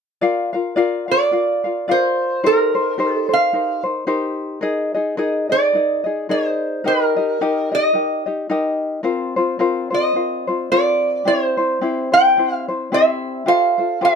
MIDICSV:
0, 0, Header, 1, 3, 480
1, 0, Start_track
1, 0, Key_signature, -2, "major"
1, 0, Tempo, 552486
1, 186, Time_signature, 4, 2, 24, 8
1, 12295, End_track
2, 0, Start_track
2, 0, Title_t, "Resonator guitar played with a steel bar"
2, 0, Program_c, 0, 25
2, 968, Note_on_c, 0, 74, 81
2, 1658, Note_off_c, 0, 74, 0
2, 1663, Note_on_c, 0, 72, 71
2, 2136, Note_off_c, 0, 72, 0
2, 2141, Note_on_c, 0, 70, 82
2, 2663, Note_off_c, 0, 70, 0
2, 2663, Note_on_c, 0, 69, 82
2, 2898, Note_on_c, 0, 77, 92
2, 2899, Note_off_c, 0, 69, 0
2, 3325, Note_off_c, 0, 77, 0
2, 4795, Note_on_c, 0, 74, 90
2, 5481, Note_off_c, 0, 74, 0
2, 5484, Note_on_c, 0, 72, 73
2, 5966, Note_off_c, 0, 72, 0
2, 5973, Note_on_c, 0, 70, 79
2, 6731, Note_on_c, 0, 75, 89
2, 6735, Note_off_c, 0, 70, 0
2, 7162, Note_off_c, 0, 75, 0
2, 8639, Note_on_c, 0, 75, 76
2, 9307, Note_off_c, 0, 75, 0
2, 9311, Note_on_c, 0, 74, 76
2, 9796, Note_on_c, 0, 73, 83
2, 9802, Note_off_c, 0, 74, 0
2, 9944, Note_off_c, 0, 73, 0
2, 9944, Note_on_c, 0, 72, 83
2, 10543, Note_on_c, 0, 79, 98
2, 10569, Note_off_c, 0, 72, 0
2, 10891, Note_off_c, 0, 79, 0
2, 10891, Note_on_c, 0, 77, 98
2, 10989, Note_off_c, 0, 77, 0
2, 11245, Note_on_c, 0, 76, 87
2, 11711, Note_off_c, 0, 76, 0
2, 11714, Note_on_c, 0, 77, 99
2, 12202, Note_off_c, 0, 77, 0
2, 12205, Note_on_c, 0, 75, 91
2, 12295, Note_off_c, 0, 75, 0
2, 12295, End_track
3, 0, Start_track
3, 0, Title_t, "Ukulele"
3, 0, Program_c, 1, 24
3, 185, Note_on_c, 1, 74, 80
3, 187, Note_on_c, 1, 70, 81
3, 192, Note_on_c, 1, 65, 74
3, 198, Note_on_c, 1, 77, 93
3, 449, Note_off_c, 1, 77, 0
3, 459, Note_off_c, 1, 70, 0
3, 459, Note_on_c, 1, 77, 56
3, 461, Note_off_c, 1, 74, 0
3, 464, Note_off_c, 1, 65, 0
3, 469, Note_on_c, 1, 70, 49
3, 477, Note_on_c, 1, 65, 45
3, 656, Note_off_c, 1, 65, 0
3, 658, Note_on_c, 1, 74, 86
3, 659, Note_off_c, 1, 70, 0
3, 664, Note_off_c, 1, 77, 0
3, 666, Note_on_c, 1, 65, 83
3, 669, Note_on_c, 1, 70, 95
3, 677, Note_on_c, 1, 77, 93
3, 927, Note_off_c, 1, 77, 0
3, 936, Note_off_c, 1, 70, 0
3, 937, Note_off_c, 1, 74, 0
3, 937, Note_on_c, 1, 77, 51
3, 938, Note_off_c, 1, 65, 0
3, 946, Note_on_c, 1, 70, 45
3, 949, Note_on_c, 1, 65, 40
3, 1137, Note_off_c, 1, 65, 0
3, 1141, Note_on_c, 1, 74, 51
3, 1143, Note_off_c, 1, 77, 0
3, 1146, Note_off_c, 1, 70, 0
3, 1147, Note_on_c, 1, 65, 58
3, 1156, Note_on_c, 1, 70, 57
3, 1159, Note_on_c, 1, 77, 56
3, 1415, Note_off_c, 1, 77, 0
3, 1418, Note_off_c, 1, 74, 0
3, 1421, Note_off_c, 1, 65, 0
3, 1422, Note_off_c, 1, 70, 0
3, 1425, Note_on_c, 1, 77, 47
3, 1433, Note_on_c, 1, 70, 46
3, 1442, Note_on_c, 1, 65, 44
3, 1626, Note_off_c, 1, 77, 0
3, 1627, Note_off_c, 1, 65, 0
3, 1630, Note_off_c, 1, 70, 0
3, 1631, Note_on_c, 1, 74, 65
3, 1638, Note_on_c, 1, 65, 76
3, 1640, Note_on_c, 1, 70, 76
3, 1645, Note_on_c, 1, 77, 77
3, 2107, Note_off_c, 1, 74, 0
3, 2110, Note_off_c, 1, 65, 0
3, 2110, Note_off_c, 1, 70, 0
3, 2114, Note_off_c, 1, 77, 0
3, 2114, Note_on_c, 1, 67, 65
3, 2115, Note_on_c, 1, 63, 73
3, 2117, Note_on_c, 1, 70, 72
3, 2120, Note_on_c, 1, 72, 81
3, 2377, Note_off_c, 1, 72, 0
3, 2384, Note_off_c, 1, 67, 0
3, 2385, Note_off_c, 1, 63, 0
3, 2385, Note_off_c, 1, 70, 0
3, 2387, Note_on_c, 1, 72, 54
3, 2400, Note_on_c, 1, 70, 44
3, 2407, Note_on_c, 1, 63, 45
3, 2584, Note_off_c, 1, 70, 0
3, 2587, Note_off_c, 1, 63, 0
3, 2587, Note_off_c, 1, 72, 0
3, 2588, Note_on_c, 1, 67, 66
3, 2595, Note_on_c, 1, 70, 79
3, 2597, Note_on_c, 1, 63, 73
3, 2603, Note_on_c, 1, 72, 79
3, 2846, Note_off_c, 1, 72, 0
3, 2857, Note_off_c, 1, 70, 0
3, 2857, Note_on_c, 1, 72, 47
3, 2861, Note_off_c, 1, 67, 0
3, 2862, Note_off_c, 1, 63, 0
3, 2868, Note_on_c, 1, 70, 42
3, 2873, Note_on_c, 1, 63, 40
3, 3059, Note_off_c, 1, 63, 0
3, 3062, Note_off_c, 1, 72, 0
3, 3065, Note_on_c, 1, 67, 49
3, 3067, Note_off_c, 1, 70, 0
3, 3069, Note_on_c, 1, 63, 55
3, 3076, Note_on_c, 1, 70, 55
3, 3085, Note_on_c, 1, 72, 56
3, 3322, Note_off_c, 1, 72, 0
3, 3332, Note_on_c, 1, 72, 49
3, 3336, Note_off_c, 1, 70, 0
3, 3339, Note_off_c, 1, 67, 0
3, 3341, Note_off_c, 1, 63, 0
3, 3346, Note_on_c, 1, 70, 49
3, 3353, Note_on_c, 1, 63, 45
3, 3527, Note_off_c, 1, 63, 0
3, 3530, Note_off_c, 1, 72, 0
3, 3533, Note_off_c, 1, 70, 0
3, 3534, Note_on_c, 1, 67, 85
3, 3537, Note_on_c, 1, 63, 80
3, 3540, Note_on_c, 1, 72, 81
3, 3543, Note_on_c, 1, 70, 78
3, 4001, Note_off_c, 1, 70, 0
3, 4004, Note_on_c, 1, 70, 75
3, 4011, Note_off_c, 1, 63, 0
3, 4014, Note_off_c, 1, 67, 0
3, 4015, Note_on_c, 1, 63, 79
3, 4017, Note_off_c, 1, 72, 0
3, 4017, Note_on_c, 1, 68, 80
3, 4021, Note_on_c, 1, 75, 91
3, 4286, Note_off_c, 1, 75, 0
3, 4288, Note_off_c, 1, 70, 0
3, 4292, Note_off_c, 1, 68, 0
3, 4294, Note_off_c, 1, 63, 0
3, 4296, Note_on_c, 1, 75, 54
3, 4303, Note_on_c, 1, 68, 54
3, 4314, Note_on_c, 1, 63, 46
3, 4489, Note_off_c, 1, 63, 0
3, 4493, Note_off_c, 1, 68, 0
3, 4493, Note_on_c, 1, 70, 88
3, 4496, Note_off_c, 1, 75, 0
3, 4499, Note_on_c, 1, 63, 82
3, 4504, Note_on_c, 1, 68, 92
3, 4506, Note_on_c, 1, 75, 89
3, 4763, Note_off_c, 1, 75, 0
3, 4771, Note_off_c, 1, 68, 0
3, 4773, Note_off_c, 1, 70, 0
3, 4774, Note_on_c, 1, 75, 52
3, 4776, Note_off_c, 1, 63, 0
3, 4781, Note_on_c, 1, 68, 45
3, 4786, Note_on_c, 1, 63, 41
3, 4980, Note_off_c, 1, 75, 0
3, 4981, Note_on_c, 1, 70, 50
3, 4983, Note_off_c, 1, 63, 0
3, 4983, Note_off_c, 1, 68, 0
3, 4994, Note_on_c, 1, 63, 50
3, 4997, Note_on_c, 1, 68, 53
3, 5002, Note_on_c, 1, 75, 55
3, 5236, Note_off_c, 1, 75, 0
3, 5247, Note_on_c, 1, 75, 49
3, 5255, Note_off_c, 1, 68, 0
3, 5256, Note_off_c, 1, 63, 0
3, 5257, Note_off_c, 1, 70, 0
3, 5266, Note_on_c, 1, 63, 40
3, 5266, Note_on_c, 1, 68, 45
3, 5456, Note_off_c, 1, 75, 0
3, 5461, Note_off_c, 1, 63, 0
3, 5461, Note_off_c, 1, 68, 0
3, 5466, Note_on_c, 1, 70, 71
3, 5471, Note_on_c, 1, 63, 75
3, 5472, Note_on_c, 1, 68, 73
3, 5481, Note_on_c, 1, 75, 77
3, 5941, Note_off_c, 1, 68, 0
3, 5944, Note_off_c, 1, 70, 0
3, 5944, Note_on_c, 1, 70, 70
3, 5948, Note_off_c, 1, 63, 0
3, 5952, Note_on_c, 1, 63, 72
3, 5957, Note_on_c, 1, 67, 74
3, 5961, Note_off_c, 1, 75, 0
3, 5964, Note_on_c, 1, 75, 73
3, 6214, Note_off_c, 1, 75, 0
3, 6218, Note_off_c, 1, 70, 0
3, 6222, Note_off_c, 1, 63, 0
3, 6225, Note_off_c, 1, 67, 0
3, 6225, Note_on_c, 1, 75, 50
3, 6235, Note_on_c, 1, 63, 39
3, 6235, Note_on_c, 1, 67, 45
3, 6425, Note_off_c, 1, 75, 0
3, 6430, Note_off_c, 1, 63, 0
3, 6430, Note_off_c, 1, 67, 0
3, 6439, Note_on_c, 1, 63, 79
3, 6439, Note_on_c, 1, 70, 72
3, 6441, Note_on_c, 1, 67, 79
3, 6449, Note_on_c, 1, 75, 81
3, 6695, Note_off_c, 1, 75, 0
3, 6702, Note_off_c, 1, 67, 0
3, 6705, Note_on_c, 1, 75, 49
3, 6706, Note_off_c, 1, 63, 0
3, 6706, Note_off_c, 1, 70, 0
3, 6713, Note_on_c, 1, 67, 42
3, 6719, Note_on_c, 1, 63, 40
3, 6890, Note_off_c, 1, 67, 0
3, 6891, Note_off_c, 1, 63, 0
3, 6894, Note_on_c, 1, 70, 53
3, 6901, Note_on_c, 1, 63, 49
3, 6902, Note_off_c, 1, 75, 0
3, 6907, Note_on_c, 1, 67, 55
3, 6912, Note_on_c, 1, 75, 50
3, 7166, Note_off_c, 1, 75, 0
3, 7173, Note_off_c, 1, 70, 0
3, 7176, Note_off_c, 1, 67, 0
3, 7176, Note_on_c, 1, 75, 49
3, 7177, Note_off_c, 1, 63, 0
3, 7186, Note_on_c, 1, 67, 48
3, 7194, Note_on_c, 1, 63, 38
3, 7372, Note_off_c, 1, 63, 0
3, 7377, Note_off_c, 1, 67, 0
3, 7380, Note_on_c, 1, 70, 78
3, 7381, Note_off_c, 1, 75, 0
3, 7382, Note_on_c, 1, 63, 81
3, 7391, Note_on_c, 1, 67, 78
3, 7394, Note_on_c, 1, 75, 83
3, 7842, Note_off_c, 1, 67, 0
3, 7845, Note_off_c, 1, 70, 0
3, 7845, Note_on_c, 1, 70, 69
3, 7847, Note_off_c, 1, 63, 0
3, 7850, Note_on_c, 1, 60, 79
3, 7853, Note_on_c, 1, 65, 82
3, 7854, Note_off_c, 1, 75, 0
3, 7857, Note_on_c, 1, 72, 82
3, 8124, Note_off_c, 1, 72, 0
3, 8129, Note_off_c, 1, 70, 0
3, 8132, Note_off_c, 1, 60, 0
3, 8133, Note_off_c, 1, 65, 0
3, 8134, Note_on_c, 1, 72, 60
3, 8142, Note_on_c, 1, 65, 55
3, 8152, Note_on_c, 1, 60, 49
3, 8325, Note_off_c, 1, 60, 0
3, 8328, Note_off_c, 1, 65, 0
3, 8332, Note_on_c, 1, 70, 84
3, 8335, Note_off_c, 1, 72, 0
3, 8336, Note_on_c, 1, 60, 82
3, 8338, Note_on_c, 1, 65, 82
3, 8346, Note_on_c, 1, 72, 85
3, 8594, Note_off_c, 1, 72, 0
3, 8605, Note_on_c, 1, 72, 46
3, 8606, Note_off_c, 1, 65, 0
3, 8613, Note_off_c, 1, 70, 0
3, 8615, Note_off_c, 1, 60, 0
3, 8616, Note_on_c, 1, 65, 44
3, 8624, Note_on_c, 1, 60, 45
3, 8809, Note_off_c, 1, 60, 0
3, 8813, Note_on_c, 1, 70, 49
3, 8816, Note_off_c, 1, 65, 0
3, 8816, Note_off_c, 1, 72, 0
3, 8819, Note_on_c, 1, 60, 50
3, 8826, Note_on_c, 1, 65, 55
3, 8829, Note_on_c, 1, 72, 56
3, 9089, Note_off_c, 1, 72, 0
3, 9093, Note_off_c, 1, 70, 0
3, 9097, Note_off_c, 1, 60, 0
3, 9098, Note_off_c, 1, 65, 0
3, 9099, Note_on_c, 1, 72, 50
3, 9108, Note_on_c, 1, 65, 42
3, 9113, Note_on_c, 1, 60, 38
3, 9300, Note_off_c, 1, 65, 0
3, 9303, Note_off_c, 1, 72, 0
3, 9304, Note_off_c, 1, 60, 0
3, 9310, Note_on_c, 1, 70, 69
3, 9311, Note_on_c, 1, 65, 65
3, 9314, Note_on_c, 1, 60, 71
3, 9319, Note_on_c, 1, 72, 70
3, 9772, Note_off_c, 1, 70, 0
3, 9776, Note_on_c, 1, 67, 65
3, 9777, Note_off_c, 1, 60, 0
3, 9780, Note_on_c, 1, 60, 75
3, 9785, Note_off_c, 1, 72, 0
3, 9787, Note_off_c, 1, 65, 0
3, 9789, Note_on_c, 1, 72, 72
3, 9793, Note_on_c, 1, 64, 71
3, 10044, Note_off_c, 1, 72, 0
3, 10051, Note_off_c, 1, 64, 0
3, 10054, Note_on_c, 1, 72, 49
3, 10056, Note_off_c, 1, 67, 0
3, 10058, Note_off_c, 1, 60, 0
3, 10061, Note_on_c, 1, 64, 49
3, 10074, Note_on_c, 1, 60, 46
3, 10255, Note_off_c, 1, 60, 0
3, 10261, Note_off_c, 1, 72, 0
3, 10263, Note_off_c, 1, 64, 0
3, 10263, Note_on_c, 1, 67, 71
3, 10266, Note_on_c, 1, 60, 75
3, 10271, Note_on_c, 1, 72, 77
3, 10273, Note_on_c, 1, 64, 76
3, 10518, Note_off_c, 1, 72, 0
3, 10525, Note_off_c, 1, 64, 0
3, 10529, Note_on_c, 1, 72, 49
3, 10536, Note_off_c, 1, 60, 0
3, 10536, Note_on_c, 1, 64, 51
3, 10539, Note_off_c, 1, 67, 0
3, 10546, Note_on_c, 1, 60, 42
3, 10739, Note_off_c, 1, 72, 0
3, 10742, Note_off_c, 1, 64, 0
3, 10744, Note_off_c, 1, 60, 0
3, 10745, Note_on_c, 1, 67, 55
3, 10755, Note_on_c, 1, 60, 53
3, 10761, Note_on_c, 1, 64, 55
3, 10767, Note_on_c, 1, 72, 56
3, 11009, Note_off_c, 1, 72, 0
3, 11014, Note_off_c, 1, 64, 0
3, 11020, Note_on_c, 1, 72, 55
3, 11021, Note_off_c, 1, 67, 0
3, 11025, Note_on_c, 1, 64, 41
3, 11026, Note_off_c, 1, 60, 0
3, 11035, Note_on_c, 1, 60, 44
3, 11217, Note_off_c, 1, 60, 0
3, 11223, Note_on_c, 1, 67, 73
3, 11224, Note_off_c, 1, 64, 0
3, 11225, Note_off_c, 1, 72, 0
3, 11227, Note_on_c, 1, 60, 72
3, 11234, Note_on_c, 1, 64, 72
3, 11234, Note_on_c, 1, 72, 80
3, 11689, Note_off_c, 1, 67, 0
3, 11693, Note_on_c, 1, 67, 71
3, 11695, Note_off_c, 1, 60, 0
3, 11698, Note_on_c, 1, 65, 73
3, 11702, Note_off_c, 1, 64, 0
3, 11705, Note_on_c, 1, 69, 76
3, 11706, Note_off_c, 1, 72, 0
3, 11709, Note_on_c, 1, 72, 75
3, 11962, Note_off_c, 1, 72, 0
3, 11969, Note_off_c, 1, 67, 0
3, 11971, Note_off_c, 1, 69, 0
3, 11972, Note_on_c, 1, 72, 56
3, 11978, Note_off_c, 1, 65, 0
3, 11982, Note_on_c, 1, 69, 46
3, 11989, Note_on_c, 1, 65, 46
3, 12165, Note_off_c, 1, 65, 0
3, 12166, Note_off_c, 1, 69, 0
3, 12169, Note_off_c, 1, 72, 0
3, 12172, Note_on_c, 1, 67, 72
3, 12175, Note_on_c, 1, 65, 76
3, 12176, Note_on_c, 1, 69, 86
3, 12182, Note_on_c, 1, 72, 77
3, 12295, Note_off_c, 1, 65, 0
3, 12295, Note_off_c, 1, 67, 0
3, 12295, Note_off_c, 1, 69, 0
3, 12295, Note_off_c, 1, 72, 0
3, 12295, End_track
0, 0, End_of_file